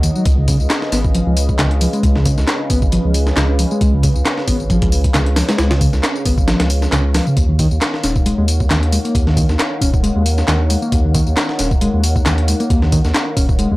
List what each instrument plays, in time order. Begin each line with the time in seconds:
Already playing: analog synth pad D#4 A#4 C#5 D#5 F#5
0.03 reed electric piano D#3, closed hi-hat, tambourine
0.15 reed electric piano F#3, tambourine
0.25 sub bass C#2, analog synth pad C#4 G#4 B4 F5, kick, closed hi-hat, tambourine
0.38 reed electric piano C#3
0.48 reed electric piano C#3, kick, closed hi-hat, open hi-hat, tambourine
0.60 sub bass C#2, tambourine
0.70 snare, clap, closed hi-hat, tambourine
0.82 snare
0.92 sub bass G#1, reed electric piano B3, snare, closed hi-hat, open hi-hat, tambourine
1.04 kick, tambourine
1.15 reed electric piano F3, closed hi-hat, tambourine
1.27 sub bass C#2, reed electric piano F3
1.37 closed hi-hat, open hi-hat, tambourine
1.49 kick, tambourine
1.59 sub bass C#2, reed electric piano C#3, snare, clap, closed hi-hat, tambourine
1.71 closed hi-hat
1.81 reed electric piano F3, closed hi-hat, open hi-hat, tambourine
1.93 reed electric piano G#3, closed hi-hat, tambourine
2.03 sub bass C#2, kick, closed hi-hat, tambourine
2.16 reed electric piano C#3, snare
2.26 reed electric piano C#3, kick, closed hi-hat, open hi-hat, tambourine
2.38 sub bass C#2, snare, tambourine
2.48 snare, clap, closed hi-hat, tambourine
2.70 sub bass G#1, reed electric piano B3, kick, closed hi-hat, open hi-hat, tambourine
2.82 kick, tambourine
2.92 reed electric piano F3, closed hi-hat, tambourine
3.05 sub bass C#2, reed electric piano F3
3.14 closed hi-hat, open hi-hat, tambourine
3.27 snare, tambourine
3.37 sub bass C#2, reed electric piano C#3, snare, clap, closed hi-hat, tambourine
3.59 reed electric piano F3, closed hi-hat, open hi-hat, tambourine
3.71 reed electric piano G#3, tambourine
3.81 sub bass C#2, analog synth pad C#5, kick, closed hi-hat, tambourine
3.94 reed electric piano C#3
4.03 reed electric piano C#3, kick, closed hi-hat, open hi-hat, tambourine
4.16 sub bass C#2, tambourine
4.25 snare, clap, closed hi-hat, tambourine
4.38 snare
4.47 sub bass G#1, reed electric piano B3, kick, closed hi-hat, open hi-hat, tambourine
4.60 tambourine
4.70 reed electric piano F3, kick, closed hi-hat, tambourine
4.82 sub bass C#2, reed electric piano F3, kick, closed hi-hat
4.92 open hi-hat, tambourine
5.04 kick, closed hi-hat, tambourine
5.14 sub bass C#2, reed electric piano C#3, snare, clap, closed hi-hat, tambourine
5.26 closed hi-hat
5.36 reed electric piano F3, snare, closed hi-hat, open hi-hat, tambourine
5.49 reed electric piano G#3, snare, closed hi-hat, tambourine
5.58 sub bass C#2, snare, closed hi-hat, tambourine
5.71 reed electric piano C#3, snare, closed hi-hat
5.81 reed electric piano C#3, kick, closed hi-hat, open hi-hat, tambourine
5.93 sub bass C#2, snare, tambourine
6.03 snare, clap, closed hi-hat, tambourine
6.16 tambourine
6.25 sub bass G#1, reed electric piano B3, kick, closed hi-hat, open hi-hat, tambourine
6.38 kick, tambourine
6.48 reed electric piano F3, snare, closed hi-hat, tambourine
6.60 sub bass C#2, reed electric piano F3, snare, closed hi-hat, tambourine
6.70 closed hi-hat, open hi-hat, tambourine
6.82 snare, tambourine
6.92 sub bass C#2, reed electric piano C#3, snare, clap, closed hi-hat, tambourine
7.14 reed electric piano F3, snare, closed hi-hat, open hi-hat, tambourine
7.27 reed electric piano C#3, tambourine
7.37 sub bass D#2, analog synth pad D#4 A#4 F#5, kick, closed hi-hat, tambourine
7.49 reed electric piano D#3
7.59 reed electric piano D#3, kick, closed hi-hat, open hi-hat, tambourine
7.71 sub bass D#2, tambourine
7.81 snare, clap, closed hi-hat, tambourine
7.94 snare
8.03 sub bass D#1, reed electric piano C#4, snare, closed hi-hat, open hi-hat, tambourine
8.16 kick, tambourine
8.26 reed electric piano G#3, closed hi-hat, tambourine
8.38 sub bass D#2, reed electric piano G#3
8.48 closed hi-hat, open hi-hat, tambourine
8.60 kick, tambourine
8.70 sub bass D#2, reed electric piano D#3, snare, clap, closed hi-hat, tambourine
8.83 closed hi-hat
8.92 reed electric piano G#3, closed hi-hat, open hi-hat, tambourine
9.05 reed electric piano A#3, closed hi-hat, tambourine
9.15 sub bass D#2, kick, closed hi-hat, tambourine
9.27 reed electric piano D#3, snare
9.37 reed electric piano D#3, kick, closed hi-hat, open hi-hat, tambourine
9.49 sub bass D#2, snare, tambourine
9.59 snare, clap, closed hi-hat, tambourine
9.81 sub bass D#1, reed electric piano C#4, kick, closed hi-hat, open hi-hat, tambourine
9.94 kick, tambourine
10.03 reed electric piano G#3, closed hi-hat, tambourine
10.15 sub bass D#2, reed electric piano G#3
10.26 closed hi-hat, open hi-hat, tambourine
10.38 snare, tambourine
10.48 sub bass D#2, reed electric piano D#3, snare, clap, closed hi-hat, tambourine
10.70 reed electric piano G#3, closed hi-hat, open hi-hat, tambourine
10.82 reed electric piano A#3, tambourine
10.92 sub bass D#2, kick, closed hi-hat, tambourine
11.04 reed electric piano D#3
11.15 reed electric piano D#3, kick, closed hi-hat, open hi-hat, tambourine
11.27 sub bass D#2, tambourine
11.37 snare, clap, closed hi-hat, tambourine
11.49 snare
11.59 sub bass D#1, reed electric piano C#4, snare, closed hi-hat, open hi-hat, tambourine
11.71 kick, tambourine
11.81 reed electric piano G#3, closed hi-hat, tambourine
11.94 sub bass D#2
12.04 closed hi-hat, open hi-hat, tambourine
12.16 kick, tambourine
12.26 sub bass D#2, reed electric piano D#3, snare, clap, closed hi-hat, tambourine
12.38 closed hi-hat
12.48 reed electric piano G#3, closed hi-hat, open hi-hat, tambourine
12.60 reed electric piano A#3, closed hi-hat, tambourine
12.70 sub bass D#2, kick, closed hi-hat, tambourine
12.82 reed electric piano D#3, snare
12.92 reed electric piano D#3, kick, closed hi-hat, open hi-hat, tambourine
13.05 sub bass D#2, snare, tambourine
13.15 snare, clap, closed hi-hat, tambourine
13.37 sub bass D#1, reed electric piano C#4, kick, closed hi-hat, open hi-hat, tambourine
13.49 kick, tambourine
13.59 reed electric piano G#3, closed hi-hat, tambourine
13.71 sub bass D#2, reed electric piano G#3